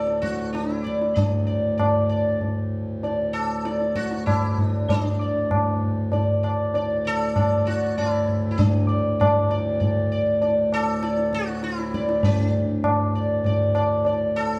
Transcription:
Already playing: D2 A2 A4 D5
0.07 tabla te
0.22 F#4, tabla ke
0.39 tabla te
0.53 D4, tabla te
0.71 E4, tabla te
0.84 D5, tabla ke
1.01 tabla te
1.16 D2 A2 D4, tabla tin, tabla ge
1.47 D5
1.78 D5, tabla na, tabla ge
2.09 D5
2.41 tabla tin, tabla ge
3.03 D5, tabla tin
3.33 A4, tabla na
3.65 D5, tabla te
3.80 tabla te
3.95 F#4, tabla ke
4.11 tabla te
4.26 E4, tabla na, tabla ge
4.58 tabla ge
4.67 D4
4.89 D4, tabla tin, tabla ge
5.21 D5
5.51 tabla na, tabla ge
5.82 tabla ge
6.12 D5, tabla tin, tabla ge
6.43 D5, tabla na
6.74 D5, tabla tin
7.05 A4 D5
7.36 D5, tabla na, tabla ge
7.66 F#4 D5, tabla te
7.97 E4 D5, tabla na, tabla ge
8.29 tabla ge
8.51 E4
8.58 D2 A2 D4, tabla tin, tabla ge
8.89 D5
9.20 D5, tabla na, tabla ge
9.51 D5, tabla te
9.80 D5, tabla tin, tabla ge
10.12 D5
10.42 D5, tabla tin
10.72 A4, tabla na
11.03 D5, tabla te
11.18 tabla te
11.33 F#4, tabla ke
11.48 tabla te
11.63 F4, tabla te
11.79 E4, tabla te
11.94 D5, tabla ke
12.09 tabla te
12.23 C#4, tabla tin, tabla ge
12.47 D4
12.84 tabla na, tabla ge
13.15 D5
13.44 D5, tabla tin, tabla ge
13.75 D5, tabla na
14.05 D5, tabla tin
14.36 A4, tabla na

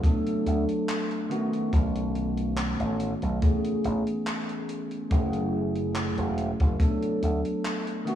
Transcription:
0.03 F#3 A3 B3 D4 A4, kick, closed hi-hat
0.27 closed hi-hat
0.46 D2, closed hi-hat
0.69 closed hi-hat
0.89 clap, closed hi-hat
1.11 closed hi-hat
1.29 D#3 A3 B3 C#4 F#4, closed hi-hat
1.53 closed hi-hat
1.73 B1, kick, closed hi-hat
1.96 closed hi-hat
2.15 closed hi-hat
2.37 closed hi-hat
2.57 clap, closed hi-hat
2.80 A1, closed hi-hat
3.00 closed hi-hat
3.22 B1, closed hi-hat
3.41 E3 A3 B3 C#4 G#4, kick, closed hi-hat
3.65 closed hi-hat
3.84 A1, closed hi-hat
4.07 closed hi-hat
4.27 clap, closed hi-hat
4.49 closed hi-hat
4.69 closed hi-hat
4.91 closed hi-hat
5.10 F#1 F#3 A3 C#4 E4 G#4, kick, closed hi-hat
5.33 closed hi-hat
5.76 closed hi-hat
5.95 clap, closed hi-hat
6.18 E1, closed hi-hat
6.38 closed hi-hat
6.60 F#1, kick, closed hi-hat
6.79 F#3 A3 B3 D4 A4, kick, closed hi-hat
7.03 closed hi-hat
7.23 D2, closed hi-hat
7.45 closed hi-hat
7.65 clap, closed hi-hat
7.87 closed hi-hat
8.05 D#3 A3 B3 C#4 F#4, closed hi-hat

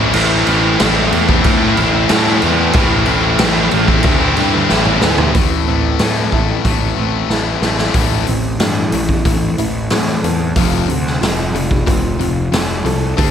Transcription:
Already playing: A1 A2 E3 A3
0.00 A3 C4 E4
0.14 A1 A2 E3 A3 C4 E4, crash
0.46 A1 E3 A3 C4 E4, crash
0.64 A3 C4 E4
0.79 A1 A2 E3 A3 C4 E4, snare, crash
1.12 E2, muted distorted electric guitar stroke, crash
1.27 A3 C4 E4, muted distorted electric guitar stroke, kick
1.44 A2, kick, crash
1.60 A3 C4 E4
1.76 A1 E3 A3 C4 E4, crash
1.92 A3 C4 E4, muted distorted electric guitar stroke
2.08 A2 E3 A3 C4 E4, snare, crash
2.25 A3 C4 E4, snare
2.41 E2 E3 A3 C4 E4, crash
2.58 A3 C4 E4
2.73 A1 A2 E3 A3 C4 E4, kick, crash
3.06 A1 E3 A3 C4 E4, crash
3.23 A3 C4 E4
3.39 A1 A2 E3 A3 C4 E4, snare, crash
3.71 A1 E3 A3, muted distorted electric guitar stroke, crash
3.76 A2
3.87 A3 C4 E4, muted distorted electric guitar stroke, kick
4.03 D2, kick, crash
4.20 A3 C4 E4
4.36 G2 E3 A3 C4 E4, crash
4.52 A3 C4 E4, muted distorted electric guitar stroke
4.69 A1 A2 E3 A3 C4 E4, snare
4.85 A3 C4 E4, mid tom
5.01 D2 E3 A3 C4 E4, snare
5.18 A3 C4 E4, floor tom
5.34 A1 A2 E3 A3, kick, open hi-hat
5.67 A1 A2 E3 A3 C4
5.99 A2 E3 A3 A4, snare, open hi-hat
6.32 A1 A2 E3 A3 E4, kick
6.64 A1 A2 E3 A3, kick, open hi-hat
6.96 A1 A2 E3 A3 C4
7.29 A1 A2 E3 A3 E4, snare
7.61 A1 A2 E3 A3 C4, snare
7.78 snare
7.94 A1 A2 E3 A3, kick, open hi-hat
8.27 A1 A2 E3 C4, open hi-hat
8.59 G2 A2 E3 E4, snare, open hi-hat
8.92 A1 A2 E3 A3, open hi-hat
9.09 kick
9.25 A1 A2 E3 C4, kick, open hi-hat
9.58 A1 A2 E3 E4, open hi-hat
9.90 A2 E3 C4, snare, open hi-hat
10.07 snare
10.23 E2 A2 E3 A4, open hi-hat
10.56 F1 F2 C3 F3, kick, open hi-hat
10.88 D2 F2 C3 C4, open hi-hat
11.07 snare
11.21 F1 F2 C3 F4, snare, open hi-hat
11.52 F1 F2 C3 G3, open hi-hat
11.71 kick
11.86 F1 F2 C3 C4, kick, open hi-hat
12.19 F1 F2 C3 F4, open hi-hat
12.52 F1 F2 C3 C4, snare, open hi-hat
12.84 C2 F2 C3 A4, open hi-hat
13.17 D2 D3 A3 D4, kick, open hi-hat

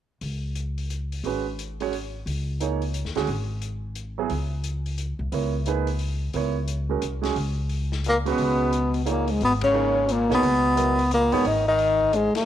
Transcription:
0.21 C#2, open hi-hat
0.55 closed hi-hat
0.78 open hi-hat
0.90 closed hi-hat
1.12 open hi-hat
1.24 G#1 G#3 C#4 F#4 B4, open hi-hat
1.59 closed hi-hat
1.80 G#3 C#4 F#4 C#5, open hi-hat
1.93 open hi-hat
2.26 C#2, open hi-hat
2.60 A#3 D#4 G#4 C#5, closed hi-hat
2.82 open hi-hat
2.94 closed hi-hat
3.05 D#2, snare
3.15 D2 G#3 C#4 F#4 G#4, snare, open hi-hat
3.27 G#1, open hi-hat
3.62 closed hi-hat
3.95 closed hi-hat
4.18 F#3 B3 E4 G#4
4.30 C#2, open hi-hat
4.64 closed hi-hat
4.86 open hi-hat
4.98 closed hi-hat
5.19 C2
5.32 C#2 B3 E4 A#4 C#5, open hi-hat
5.66 A#3 D#4 G#4 B4, closed hi-hat
5.87 open hi-hat
5.99 open hi-hat
6.34 C#2 B3 E4 A#4 C#5, open hi-hat
6.68 closed hi-hat
6.89 G#3 C#4 F#4 A#4
7.02 C2, closed hi-hat
7.22 G#3 C#4 F#4 G#4, snare, open hi-hat
7.36 C#2, open hi-hat
7.69 open hi-hat
7.92 snare
8.04 A#2, closed hi-hat
8.08 A#3
8.25 B2 G#3 C#4 F#4 B4, open hi-hat
8.30 B3
8.38 C#2, open hi-hat
8.73 closed hi-hat
8.94 open hi-hat
9.05 A#2 A#3 D#4 G#4 C#5, closed hi-hat
9.10 A#3
9.28 G#2 G#3, open hi-hat
9.41 G#1 B2 B3, open hi-hat
9.61 C#3 C#4, kick, ride
9.73 A#3 D#4 G#4 C#5
10.08 A#2 A#3, closed hi-hat
10.29 B1 B2 A#3 D#4 G#4 C#5, snare
10.34 B3
10.42 C#2, open hi-hat
10.75 F#3 B3 E4 A#4, closed hi-hat
10.99 open hi-hat
11.11 A#2 A#3, closed hi-hat
11.32 G#2 B2 A#3 B3 D#4 G#4 C#5, open hi-hat
11.45 G#1 D#3 D#4, open hi-hat
11.68 D#3 D#4
11.79 open hi-hat
12.01 kick
12.13 G#2 G#3, closed hi-hat
12.34 A#2 A#3, muted upright bass stroke, snare, ride

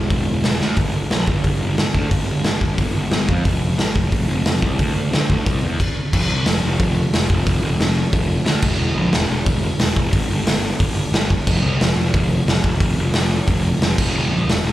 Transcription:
0.10 E1, kick, open hi-hat
0.28 E1
0.44 E1, snare, open hi-hat
0.60 D2, snare
0.76 G1, kick, open hi-hat
1.10 A#1, snare, open hi-hat
1.27 G1, kick
1.44 G1, kick, open hi-hat
1.62 G1
1.77 G1, snare, open hi-hat
1.94 D2, kick
2.11 G1, kick, open hi-hat
2.28 G1
2.44 G1, snare, open hi-hat
2.61 G1, kick
2.78 G1, kick, open hi-hat
2.94 G1
3.10 G1, snare, open hi-hat
3.28 F2, kick
3.45 F1, kick, open hi-hat
3.77 A1, snare, open hi-hat
3.95 F1, kick
4.12 F1, kick, open hi-hat
4.28 F1
4.45 F1, snare, open hi-hat
4.62 C2, kick
4.79 D2, kick, open hi-hat
4.95 D2
5.11 D2, snare, open hi-hat
5.30 D2, kick
5.46 C2, kick, open hi-hat
5.62 E2
5.80 kick, crash
6.13 F1, kick, crash
6.29 C2
6.46 F1, snare, open hi-hat
6.63 F1
6.79 F1, kick, open hi-hat
7.13 F1, snare, open hi-hat
7.29 F1, kick
7.46 F1, kick, open hi-hat
7.62 F1
7.78 F1, snare, open hi-hat
8.13 F1, kick, open hi-hat
8.45 D2, snare, open hi-hat
8.62 E1, kick, crash
8.78 E1
8.95 A#1
9.12 E1, snare, open hi-hat
9.28 E1
9.46 E1, kick, open hi-hat
9.79 E1, snare, open hi-hat
9.96 E1, kick
10.13 G1, kick, open hi-hat
10.31 G1
10.47 G1, snare, open hi-hat
10.80 G1, kick, open hi-hat
11.12 G1, snare, open hi-hat
11.30 kick
11.47 F1, kick, crash
11.62 C2
11.79 F1, snare, open hi-hat
11.96 F1
12.14 F1, kick, open hi-hat
12.47 F1, snare, open hi-hat
12.64 F1, kick
12.80 F1, kick, open hi-hat
12.97 F1
13.14 F1, snare, open hi-hat
13.47 F1, kick, open hi-hat
13.81 F1, snare, open hi-hat
13.98 E1, kick, crash
14.14 E1
14.30 A#1
14.46 E1, snare, open hi-hat
14.63 E1

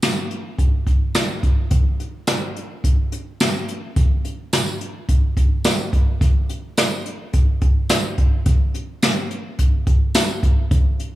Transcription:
0.02 snare, closed hi-hat, tambourine
0.31 closed hi-hat
0.58 kick, closed hi-hat
0.87 kick, closed hi-hat
1.15 snare, closed hi-hat, tambourine
1.43 kick, closed hi-hat
1.71 kick, closed hi-hat
2.00 closed hi-hat
2.27 snare, closed hi-hat, tambourine
2.56 closed hi-hat
2.84 kick, closed hi-hat
3.12 closed hi-hat
3.40 snare, closed hi-hat, tambourine
3.68 closed hi-hat
3.96 kick, closed hi-hat
4.25 closed hi-hat
4.53 snare, closed hi-hat, tambourine
4.81 closed hi-hat
5.09 kick, closed hi-hat
5.37 kick, closed hi-hat
5.64 snare, closed hi-hat, tambourine
5.93 kick, closed hi-hat
6.21 kick, closed hi-hat
6.49 closed hi-hat
6.77 snare, closed hi-hat, tambourine
7.06 closed hi-hat
7.33 kick, closed hi-hat
7.61 kick, closed hi-hat
7.89 snare, closed hi-hat, tambourine
8.18 kick, closed hi-hat
8.46 kick, closed hi-hat
8.74 closed hi-hat
9.02 snare, closed hi-hat, tambourine
9.31 closed hi-hat
9.59 kick, closed hi-hat
9.87 kick, closed hi-hat
10.15 snare, closed hi-hat, tambourine
10.43 kick, closed hi-hat
10.71 kick, closed hi-hat
10.99 closed hi-hat

